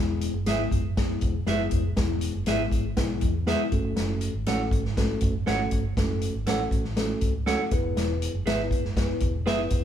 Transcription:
Already playing: fingered electric bass E1, tine electric piano G#3 B3 E4 G#4
0.21 closed hi-hat
0.33 fingered electric bass F#1
0.46 fingered electric bass G#1, tine electric piano G#3 B3 E4 G#4, clean electric guitar G#4 B4 E5, snare, closed hi-hat
0.71 fingered electric bass F#1, kick, closed hi-hat
0.97 tine electric piano G#3 B3 E4 G#4, kick, snare, closed hi-hat
1.21 fingered electric bass E1, kick, closed hi-hat
1.46 fingered electric bass F#1, tine electric piano G#3 B3 E4 G4, clean electric guitar G#4 B4 E5, snare, closed hi-hat
1.53 tine electric piano G#4
1.71 fingered electric bass F1, kick, closed hi-hat
1.97 fingered electric bass E1, tine electric piano G#3 B3 E4 G#4, kick, snare, closed hi-hat
2.21 closed hi-hat
2.35 fingered electric bass F#1
2.46 fingered electric bass G#1, tine electric piano G#3 B3 E4 G#4, clean electric guitar G#4 B4 E5, snare, closed hi-hat
2.71 fingered electric bass G#1, kick, closed hi-hat
2.97 fingered electric bass B1, tine electric piano G#3 B3 E4 G#4, kick, snare, closed hi-hat
3.21 fingered electric bass E2, kick, closed hi-hat
3.46 tine electric piano G#3 B3 E4 G#4, clean electric guitar G#4 B4 E5, snare, closed hi-hat
3.72 fingered electric bass F#1, tine electric piano A3 C#4 F#4 A4, kick, closed hi-hat
3.84 fingered electric bass G1
3.96 fingered electric bass F#1, snare, closed hi-hat
4.21 closed hi-hat
4.34 fingered electric bass G#1
4.46 fingered electric bass A1, tine electric piano A3 C#4 F#4 A4, clean electric guitar A4 C#5 F#5, snare, closed hi-hat
4.71 fingered electric bass G#1, kick, closed hi-hat
4.85 snare
4.97 tine electric piano A3 C#4 F#4 A4, kick, snare, closed hi-hat
5.21 fingered electric bass F#1, kick, closed hi-hat
5.46 fingered electric bass G#1, tine electric piano A3 C#4 F#4 A4, clean electric guitar A4 C#5 F#5, snare, closed hi-hat
5.71 fingered electric bass G1, kick, closed hi-hat
5.97 fingered electric bass F#1, tine electric piano A3 C#4 F#4 A4, kick, snare, closed hi-hat
6.21 closed hi-hat
6.34 fingered electric bass G#1
6.46 fingered electric bass A1, tine electric piano A3 C#4 F#4 A4, clean electric guitar A4 C#5 F#5, snare, closed hi-hat
6.71 fingered electric bass A1, kick, closed hi-hat
6.84 snare
6.97 tine electric piano A3 C#4 F#4 A4, snare, closed hi-hat
7.21 fingered electric bass C#2, kick, closed hi-hat
7.46 tine electric piano A3 C#4 F#4 A4, clean electric guitar A4 C#5 F#5, snare, closed hi-hat
7.71 fingered electric bass E1, tine electric piano B3 E4 G#4 B4, kick, closed hi-hat
7.83 fingered electric bass F1
7.95 fingered electric bass E1, snare, closed hi-hat
8.22 closed hi-hat
8.34 fingered electric bass F#1
8.46 fingered electric bass G#1, tine electric piano B3 E4 G#4 B4, clean electric guitar G#4 B4 E5, snare, closed hi-hat
8.71 fingered electric bass F#1, kick, closed hi-hat
8.85 snare
8.97 tine electric piano B3 E4 G#4 B4, kick, snare, closed hi-hat
9.20 fingered electric bass E1, kick, closed hi-hat
9.46 fingered electric bass F#1, tine electric piano B3 E4 G#4 B4, clean electric guitar G#4 B4 E5, snare, closed hi-hat
9.70 fingered electric bass F1, kick, closed hi-hat

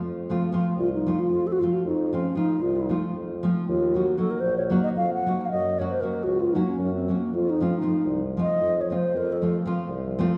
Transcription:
0.03 tuba F2
0.30 nylon-string guitar F3 A3 C4 F4
0.52 nylon-string guitar F3 A3 C4 F4
0.76 tuba C2, alto flute F4
0.93 alto flute D#4
1.06 nylon-string guitar F3 A3 C4 F4
1.19 alto flute F4
1.30 tuba F2
1.47 alto flute A4
1.52 alto flute F#4
1.60 nylon-string guitar F3 A3 C4 F4, alto flute F4
1.73 alto flute F#4
1.85 tuba F2, alto flute D#4
2.13 nylon-string guitar F3 A3 C4 F4, alto flute C#4
2.35 nylon-string guitar F3 A3 C4 F4, alto flute D#4
2.59 tuba C2, alto flute F4
2.75 alto flute D#4
2.89 nylon-string guitar F3 A3 C4 F4
3.13 tuba F2
3.43 nylon-string guitar F3 A3 C4 F4
3.68 tuba D#2, alto flute F4
3.94 nylon-string guitar F#3 A#3 D#4 F#4, alto flute F#4
4.17 nylon-string guitar F#3 A#3 D#4 F#4, alto flute A4
4.30 alto flute A#4
4.40 tuba A#1, alto flute C5
4.57 alto flute C#5
4.70 nylon-string guitar F#3 A#3 D#4 F#4
4.83 alto flute D#5
4.96 tuba F2, alto flute F5
5.14 alto flute F#5
5.26 nylon-string guitar F#3 A#3 D#4 F#4
5.41 alto flute F#5
5.45 alto flute F5
5.50 tuba F#2, alto flute D#5
5.79 nylon-string guitar F#3 A#3 C#4 F#4, alto flute C#5
5.89 alto flute C5
6.00 nylon-string guitar F#3 A#3 C#4 F#4, alto flute A#4
6.23 tuba C#2, alto flute F#4
6.40 alto flute F4
6.53 nylon-string guitar F#3 A#3 C#4 F#4, alto flute D#4
6.67 alto flute C#4
6.78 tuba F#2
6.95 alto flute C4
7.08 nylon-string guitar F#3 A#3 C#4 F#4
7.18 alto flute A#3 C4
7.33 tuba F2, alto flute F4
7.50 alto flute D#4
7.61 nylon-string guitar F3 A3 C4 F4, alto flute C4 C#4
7.68 alto flute C#4
7.75 alto flute D#4
7.81 nylon-string guitar F3 A3 C4 F4
8.06 tuba C2
8.37 nylon-string guitar F3 A3 C4 F4, alto flute D#5
8.60 tuba F2
8.81 alto flute C#5
8.90 nylon-string guitar F3 A3 C4 F4, alto flute C5
9.14 tuba F2, alto flute A#4
9.32 alto flute A4
9.42 nylon-string guitar F3 A3 C4 F4
9.66 nylon-string guitar F3 A3 C4 F4
9.89 tuba C2
10.19 nylon-string guitar F3 A3 C4 F4

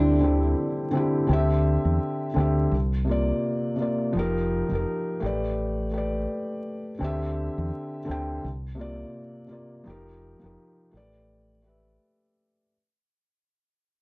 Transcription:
Already playing: fingered electric bass D2, felt piano D3 C4 E4 G4, analog synth pad D3 G3 C4 E4, nylon-string guitar D4
0.19 felt piano D3 C4 E4
0.24 felt piano G4
0.91 felt piano D3 C4 E4
0.97 felt piano G4
1.27 fingered electric bass D2, felt piano D3 C4
1.31 felt piano G4 E5
1.85 fingered electric bass E2
2.34 fingered electric bass D2, felt piano D3 C4
2.38 felt piano G4 E5
2.72 fingered electric bass C2
3.05 felt piano C3 A#3
3.09 felt piano F4 D5
3.76 felt piano C3 A#3
3.80 felt piano F4 D5
4.13 fingered electric bass F1, felt piano F3 D#4
4.17 felt piano G4 A#4
4.69 fingered electric bass F1, felt piano F3 D#4
4.73 felt piano G4 A#4
5.20 fingered electric bass A1, felt piano A3 G4
5.24 felt piano B4 D5
5.91 felt piano A3 G4
5.96 felt piano B4 D5
6.99 fingered electric bass D2, felt piano D3 C4 G4
7.04 felt piano E5
7.58 fingered electric bass E2
8.05 felt piano D3 C4
8.09 fingered electric bass D2, felt piano G4 G5
8.44 fingered electric bass C2
8.75 felt piano C3 A#3
8.79 felt piano F4 D5
9.47 felt piano C3 A#3
9.51 felt piano F4 D5
9.84 fingered electric bass F1, felt piano F3 D#4 G4
9.89 felt piano A#4
10.40 fingered electric bass F1, felt piano F3 D#4
10.44 felt piano G4 A#4
10.91 fingered electric bass A1, felt piano A3 G4 B4
10.97 felt piano D5
11.62 felt piano A3 G4
11.66 felt piano B4 E5

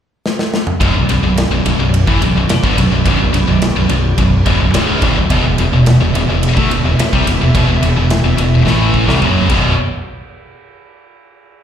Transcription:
0.26 snare
0.39 snare
0.54 snare
0.67 mid tom
0.80 fingered electric bass B0, distorted electric guitar B1 F#2, string section B3 F#4 B4 D5, kick, ride
0.95 fingered electric bass B0, distorted electric guitar B1 F#2
1.09 fingered electric bass B0, distorted electric guitar B1 F#2, ride
1.23 fingered electric bass B0, distorted electric guitar B1 F#2
1.37 snare, ride
1.50 fingered electric bass B0, distorted electric guitar B1 F#2
1.64 fingered electric bass B0, distorted electric guitar B1 F#2, ride
1.79 fingered electric bass B0, distorted electric guitar B1 F#2
1.94 ride
2.07 fingered electric bass A1, distorted electric guitar A2 E3, kick
2.21 fingered electric bass B0, distorted electric guitar B1 F#2, ride
2.35 fingered electric bass B0, distorted electric guitar B1 F#2
2.49 muted distorted electric guitar stroke, snare, ride
2.63 fingered electric bass G1, distorted electric guitar G2 D3, kick
2.77 fingered electric bass B0, distorted electric guitar B1 F#2, ride
2.91 fingered electric bass B0, distorted electric guitar B1 F#2
3.05 fingered electric bass B0, distorted electric guitar B1 F#2, kick, ride
3.20 fingered electric bass B0, distorted electric guitar B1 F#2
3.33 fingered electric bass B0, distorted electric guitar B1 F#2, ride
3.47 fingered electric bass B0, distorted electric guitar B1 F#2
3.62 snare, ride
3.76 fingered electric bass B0, distorted electric guitar B1 F#2
3.89 fingered electric bass B0, distorted electric guitar B1 F#2, ride
4.18 fingered electric bass B0, distorted electric guitar B1 F#2, kick, ride
4.46 fingered electric bass D1, distorted electric guitar D2 A2, kick, ride
4.60 fingered electric bass B0, distorted electric guitar B1 F#2
4.74 fingered electric bass C#1, distorted electric guitar C#2 G#2 C#3, snare, ride
5.02 fingered electric bass D1, distorted electric guitar D2 A2, kick, ride
5.16 fingered electric bass B0, distorted electric guitar B1 F#2
5.30 fingered electric bass E1, distorted electric guitar E2 B2, string section E3 F#4 E5, kick, ride
5.44 fingered electric bass E1, distorted electric guitar E2 B2
5.58 fingered electric bass E1, distorted electric guitar E2 B2, ride
5.73 fingered electric bass E1, distorted electric guitar E2 B2
5.86 snare, ride
6.01 fingered electric bass E1, distorted electric guitar E2 B2
6.15 fingered electric bass E1, distorted electric guitar E2 B2, ride
6.29 fingered electric bass E1, distorted electric guitar E2 B2
6.43 ride
6.57 fingered electric bass D2, distorted electric guitar D3 A3, kick
6.71 fingered electric bass E1, distorted electric guitar E2 B2, ride
6.84 fingered electric bass E1, distorted electric guitar E2 B2
6.99 muted fingered electric bass stroke, muted distorted electric guitar stroke, snare, ride
7.13 fingered electric bass C2, distorted electric guitar C3 G3, kick
7.26 fingered electric bass E1, distorted electric guitar E2 B2, ride
7.41 fingered electric bass E1, distorted electric guitar E2 B2
7.55 fingered electric bass E1, distorted electric guitar E2 B2, kick, ride
7.68 fingered electric bass E1, distorted electric guitar E2 B2
7.82 fingered electric bass E1, distorted electric guitar E2 B2, ride
7.96 fingered electric bass E1, distorted electric guitar E2 B2
8.10 snare, ride
8.24 fingered electric bass E1, distorted electric guitar E2 B2
8.37 fingered electric bass E1, distorted electric guitar E2 B2, ride
8.65 fingered electric bass A1, distorted electric guitar A2 E3 A3, snare
8.94 kick
9.07 fingered electric bass C2, distorted electric guitar C3 G3, snare
9.21 fingered electric bass F#1, distorted electric guitar F#2 C#3 F#3, mid tom
9.49 fingered electric bass B0, distorted electric guitar B1 F#2 B2, string section B3 F#4 B4 D5, kick, crash

